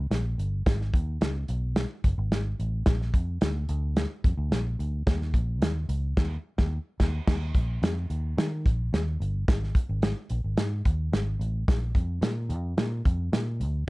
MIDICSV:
0, 0, Header, 1, 3, 480
1, 0, Start_track
1, 0, Tempo, 550964
1, 577, Time_signature, 4, 2, 24, 8
1, 12101, End_track
2, 0, Start_track
2, 0, Title_t, "Fingered electric bass"
2, 0, Program_c, 0, 33
2, 92, Note_on_c, 0, 34, 94
2, 297, Note_off_c, 0, 34, 0
2, 332, Note_on_c, 0, 31, 80
2, 537, Note_off_c, 0, 31, 0
2, 576, Note_on_c, 0, 32, 99
2, 780, Note_off_c, 0, 32, 0
2, 815, Note_on_c, 0, 39, 85
2, 1019, Note_off_c, 0, 39, 0
2, 1053, Note_on_c, 0, 37, 91
2, 1258, Note_off_c, 0, 37, 0
2, 1296, Note_on_c, 0, 35, 88
2, 1602, Note_off_c, 0, 35, 0
2, 1779, Note_on_c, 0, 30, 77
2, 1881, Note_off_c, 0, 30, 0
2, 1898, Note_on_c, 0, 32, 94
2, 2203, Note_off_c, 0, 32, 0
2, 2261, Note_on_c, 0, 33, 88
2, 2464, Note_off_c, 0, 33, 0
2, 2495, Note_on_c, 0, 34, 95
2, 2701, Note_off_c, 0, 34, 0
2, 2733, Note_on_c, 0, 41, 72
2, 2940, Note_off_c, 0, 41, 0
2, 2978, Note_on_c, 0, 38, 96
2, 3182, Note_off_c, 0, 38, 0
2, 3215, Note_on_c, 0, 38, 96
2, 3522, Note_off_c, 0, 38, 0
2, 3694, Note_on_c, 0, 41, 73
2, 3799, Note_off_c, 0, 41, 0
2, 3811, Note_on_c, 0, 38, 91
2, 3917, Note_off_c, 0, 38, 0
2, 3930, Note_on_c, 0, 34, 94
2, 4138, Note_off_c, 0, 34, 0
2, 4175, Note_on_c, 0, 38, 89
2, 4381, Note_off_c, 0, 38, 0
2, 4414, Note_on_c, 0, 39, 98
2, 4650, Note_on_c, 0, 34, 87
2, 4663, Note_off_c, 0, 39, 0
2, 4890, Note_off_c, 0, 34, 0
2, 4890, Note_on_c, 0, 39, 89
2, 5097, Note_off_c, 0, 39, 0
2, 5129, Note_on_c, 0, 37, 86
2, 5337, Note_off_c, 0, 37, 0
2, 5375, Note_on_c, 0, 39, 102
2, 5541, Note_off_c, 0, 39, 0
2, 5736, Note_on_c, 0, 39, 101
2, 5902, Note_off_c, 0, 39, 0
2, 6096, Note_on_c, 0, 39, 100
2, 6261, Note_off_c, 0, 39, 0
2, 6338, Note_on_c, 0, 39, 93
2, 6541, Note_off_c, 0, 39, 0
2, 6572, Note_on_c, 0, 34, 73
2, 6778, Note_off_c, 0, 34, 0
2, 6812, Note_on_c, 0, 41, 87
2, 7017, Note_off_c, 0, 41, 0
2, 7055, Note_on_c, 0, 39, 78
2, 7259, Note_off_c, 0, 39, 0
2, 7296, Note_on_c, 0, 51, 103
2, 7541, Note_on_c, 0, 34, 80
2, 7554, Note_off_c, 0, 51, 0
2, 7742, Note_off_c, 0, 34, 0
2, 7777, Note_on_c, 0, 39, 91
2, 7980, Note_off_c, 0, 39, 0
2, 8017, Note_on_c, 0, 31, 92
2, 8219, Note_off_c, 0, 31, 0
2, 8259, Note_on_c, 0, 32, 101
2, 8460, Note_off_c, 0, 32, 0
2, 8618, Note_on_c, 0, 32, 97
2, 8820, Note_off_c, 0, 32, 0
2, 8976, Note_on_c, 0, 34, 103
2, 9077, Note_off_c, 0, 34, 0
2, 9097, Note_on_c, 0, 32, 75
2, 9198, Note_off_c, 0, 32, 0
2, 9212, Note_on_c, 0, 44, 100
2, 9416, Note_off_c, 0, 44, 0
2, 9454, Note_on_c, 0, 39, 83
2, 9656, Note_off_c, 0, 39, 0
2, 9690, Note_on_c, 0, 32, 89
2, 9894, Note_off_c, 0, 32, 0
2, 9927, Note_on_c, 0, 33, 89
2, 10132, Note_off_c, 0, 33, 0
2, 10176, Note_on_c, 0, 34, 110
2, 10377, Note_off_c, 0, 34, 0
2, 10408, Note_on_c, 0, 41, 88
2, 10612, Note_off_c, 0, 41, 0
2, 10641, Note_on_c, 0, 46, 116
2, 10884, Note_on_c, 0, 41, 105
2, 10897, Note_off_c, 0, 46, 0
2, 11089, Note_off_c, 0, 41, 0
2, 11129, Note_on_c, 0, 46, 116
2, 11332, Note_off_c, 0, 46, 0
2, 11370, Note_on_c, 0, 41, 89
2, 11573, Note_off_c, 0, 41, 0
2, 11609, Note_on_c, 0, 46, 94
2, 11849, Note_on_c, 0, 38, 88
2, 11862, Note_off_c, 0, 46, 0
2, 12051, Note_off_c, 0, 38, 0
2, 12101, End_track
3, 0, Start_track
3, 0, Title_t, "Drums"
3, 99, Note_on_c, 9, 38, 74
3, 99, Note_on_c, 9, 42, 82
3, 186, Note_off_c, 9, 42, 0
3, 187, Note_off_c, 9, 38, 0
3, 344, Note_on_c, 9, 42, 54
3, 431, Note_off_c, 9, 42, 0
3, 578, Note_on_c, 9, 36, 114
3, 580, Note_on_c, 9, 38, 107
3, 581, Note_on_c, 9, 42, 94
3, 665, Note_off_c, 9, 36, 0
3, 668, Note_off_c, 9, 38, 0
3, 668, Note_off_c, 9, 42, 0
3, 708, Note_on_c, 9, 38, 31
3, 795, Note_off_c, 9, 38, 0
3, 815, Note_on_c, 9, 36, 101
3, 827, Note_on_c, 9, 42, 65
3, 902, Note_off_c, 9, 36, 0
3, 914, Note_off_c, 9, 42, 0
3, 1056, Note_on_c, 9, 42, 85
3, 1062, Note_on_c, 9, 38, 108
3, 1143, Note_off_c, 9, 42, 0
3, 1149, Note_off_c, 9, 38, 0
3, 1293, Note_on_c, 9, 42, 70
3, 1380, Note_off_c, 9, 42, 0
3, 1532, Note_on_c, 9, 42, 79
3, 1534, Note_on_c, 9, 38, 100
3, 1619, Note_off_c, 9, 42, 0
3, 1621, Note_off_c, 9, 38, 0
3, 1778, Note_on_c, 9, 42, 75
3, 1779, Note_on_c, 9, 36, 84
3, 1865, Note_off_c, 9, 42, 0
3, 1866, Note_off_c, 9, 36, 0
3, 2020, Note_on_c, 9, 38, 85
3, 2020, Note_on_c, 9, 42, 85
3, 2107, Note_off_c, 9, 42, 0
3, 2108, Note_off_c, 9, 38, 0
3, 2263, Note_on_c, 9, 42, 52
3, 2350, Note_off_c, 9, 42, 0
3, 2491, Note_on_c, 9, 38, 110
3, 2492, Note_on_c, 9, 42, 94
3, 2498, Note_on_c, 9, 36, 120
3, 2579, Note_off_c, 9, 38, 0
3, 2579, Note_off_c, 9, 42, 0
3, 2585, Note_off_c, 9, 36, 0
3, 2626, Note_on_c, 9, 38, 33
3, 2713, Note_off_c, 9, 38, 0
3, 2733, Note_on_c, 9, 36, 94
3, 2739, Note_on_c, 9, 42, 69
3, 2821, Note_off_c, 9, 36, 0
3, 2826, Note_off_c, 9, 42, 0
3, 2972, Note_on_c, 9, 42, 90
3, 2978, Note_on_c, 9, 38, 114
3, 3059, Note_off_c, 9, 42, 0
3, 3065, Note_off_c, 9, 38, 0
3, 3212, Note_on_c, 9, 42, 64
3, 3299, Note_off_c, 9, 42, 0
3, 3454, Note_on_c, 9, 42, 82
3, 3456, Note_on_c, 9, 38, 93
3, 3541, Note_off_c, 9, 42, 0
3, 3544, Note_off_c, 9, 38, 0
3, 3697, Note_on_c, 9, 36, 95
3, 3697, Note_on_c, 9, 42, 79
3, 3784, Note_off_c, 9, 36, 0
3, 3784, Note_off_c, 9, 42, 0
3, 3937, Note_on_c, 9, 42, 83
3, 3938, Note_on_c, 9, 38, 90
3, 4024, Note_off_c, 9, 42, 0
3, 4025, Note_off_c, 9, 38, 0
3, 4182, Note_on_c, 9, 42, 51
3, 4269, Note_off_c, 9, 42, 0
3, 4416, Note_on_c, 9, 36, 108
3, 4418, Note_on_c, 9, 38, 103
3, 4418, Note_on_c, 9, 42, 86
3, 4503, Note_off_c, 9, 36, 0
3, 4505, Note_off_c, 9, 38, 0
3, 4506, Note_off_c, 9, 42, 0
3, 4543, Note_on_c, 9, 38, 30
3, 4630, Note_off_c, 9, 38, 0
3, 4651, Note_on_c, 9, 36, 92
3, 4657, Note_on_c, 9, 42, 70
3, 4738, Note_off_c, 9, 36, 0
3, 4744, Note_off_c, 9, 42, 0
3, 4894, Note_on_c, 9, 42, 85
3, 4900, Note_on_c, 9, 38, 122
3, 4981, Note_off_c, 9, 42, 0
3, 4987, Note_off_c, 9, 38, 0
3, 5131, Note_on_c, 9, 42, 69
3, 5218, Note_off_c, 9, 42, 0
3, 5376, Note_on_c, 9, 36, 103
3, 5377, Note_on_c, 9, 38, 100
3, 5377, Note_on_c, 9, 49, 73
3, 5463, Note_off_c, 9, 36, 0
3, 5464, Note_off_c, 9, 38, 0
3, 5464, Note_off_c, 9, 49, 0
3, 5734, Note_on_c, 9, 38, 83
3, 5738, Note_on_c, 9, 36, 88
3, 5822, Note_off_c, 9, 38, 0
3, 5825, Note_off_c, 9, 36, 0
3, 6097, Note_on_c, 9, 38, 93
3, 6097, Note_on_c, 9, 49, 72
3, 6098, Note_on_c, 9, 36, 87
3, 6184, Note_off_c, 9, 38, 0
3, 6184, Note_off_c, 9, 49, 0
3, 6185, Note_off_c, 9, 36, 0
3, 6337, Note_on_c, 9, 49, 90
3, 6338, Note_on_c, 9, 36, 109
3, 6338, Note_on_c, 9, 38, 115
3, 6424, Note_off_c, 9, 49, 0
3, 6425, Note_off_c, 9, 36, 0
3, 6425, Note_off_c, 9, 38, 0
3, 6574, Note_on_c, 9, 36, 102
3, 6579, Note_on_c, 9, 42, 64
3, 6661, Note_off_c, 9, 36, 0
3, 6666, Note_off_c, 9, 42, 0
3, 6821, Note_on_c, 9, 42, 86
3, 6827, Note_on_c, 9, 38, 120
3, 6908, Note_off_c, 9, 42, 0
3, 6914, Note_off_c, 9, 38, 0
3, 7058, Note_on_c, 9, 42, 61
3, 7145, Note_off_c, 9, 42, 0
3, 7302, Note_on_c, 9, 42, 72
3, 7304, Note_on_c, 9, 38, 120
3, 7389, Note_off_c, 9, 42, 0
3, 7391, Note_off_c, 9, 38, 0
3, 7542, Note_on_c, 9, 36, 89
3, 7546, Note_on_c, 9, 42, 70
3, 7629, Note_off_c, 9, 36, 0
3, 7634, Note_off_c, 9, 42, 0
3, 7787, Note_on_c, 9, 38, 79
3, 7787, Note_on_c, 9, 42, 80
3, 7874, Note_off_c, 9, 42, 0
3, 7875, Note_off_c, 9, 38, 0
3, 8030, Note_on_c, 9, 42, 53
3, 8117, Note_off_c, 9, 42, 0
3, 8261, Note_on_c, 9, 36, 119
3, 8263, Note_on_c, 9, 38, 102
3, 8264, Note_on_c, 9, 42, 92
3, 8348, Note_off_c, 9, 36, 0
3, 8350, Note_off_c, 9, 38, 0
3, 8351, Note_off_c, 9, 42, 0
3, 8394, Note_on_c, 9, 38, 33
3, 8482, Note_off_c, 9, 38, 0
3, 8494, Note_on_c, 9, 36, 103
3, 8503, Note_on_c, 9, 42, 66
3, 8581, Note_off_c, 9, 36, 0
3, 8590, Note_off_c, 9, 42, 0
3, 8732, Note_on_c, 9, 42, 82
3, 8738, Note_on_c, 9, 38, 126
3, 8819, Note_off_c, 9, 42, 0
3, 8825, Note_off_c, 9, 38, 0
3, 8969, Note_on_c, 9, 42, 60
3, 9056, Note_off_c, 9, 42, 0
3, 9211, Note_on_c, 9, 42, 77
3, 9213, Note_on_c, 9, 38, 107
3, 9298, Note_off_c, 9, 42, 0
3, 9301, Note_off_c, 9, 38, 0
3, 9455, Note_on_c, 9, 42, 74
3, 9456, Note_on_c, 9, 36, 84
3, 9542, Note_off_c, 9, 42, 0
3, 9543, Note_off_c, 9, 36, 0
3, 9700, Note_on_c, 9, 38, 83
3, 9700, Note_on_c, 9, 42, 74
3, 9787, Note_off_c, 9, 38, 0
3, 9787, Note_off_c, 9, 42, 0
3, 9942, Note_on_c, 9, 42, 56
3, 10029, Note_off_c, 9, 42, 0
3, 10177, Note_on_c, 9, 36, 125
3, 10181, Note_on_c, 9, 38, 114
3, 10182, Note_on_c, 9, 42, 89
3, 10264, Note_off_c, 9, 36, 0
3, 10268, Note_off_c, 9, 38, 0
3, 10269, Note_off_c, 9, 42, 0
3, 10410, Note_on_c, 9, 36, 95
3, 10419, Note_on_c, 9, 42, 72
3, 10497, Note_off_c, 9, 36, 0
3, 10506, Note_off_c, 9, 42, 0
3, 10648, Note_on_c, 9, 42, 88
3, 10654, Note_on_c, 9, 38, 107
3, 10735, Note_off_c, 9, 42, 0
3, 10741, Note_off_c, 9, 38, 0
3, 10889, Note_on_c, 9, 42, 70
3, 10976, Note_off_c, 9, 42, 0
3, 11131, Note_on_c, 9, 42, 77
3, 11133, Note_on_c, 9, 38, 118
3, 11218, Note_off_c, 9, 42, 0
3, 11220, Note_off_c, 9, 38, 0
3, 11373, Note_on_c, 9, 36, 97
3, 11373, Note_on_c, 9, 42, 78
3, 11460, Note_off_c, 9, 36, 0
3, 11461, Note_off_c, 9, 42, 0
3, 11614, Note_on_c, 9, 42, 87
3, 11615, Note_on_c, 9, 38, 91
3, 11701, Note_off_c, 9, 42, 0
3, 11702, Note_off_c, 9, 38, 0
3, 11854, Note_on_c, 9, 42, 59
3, 11941, Note_off_c, 9, 42, 0
3, 12101, End_track
0, 0, End_of_file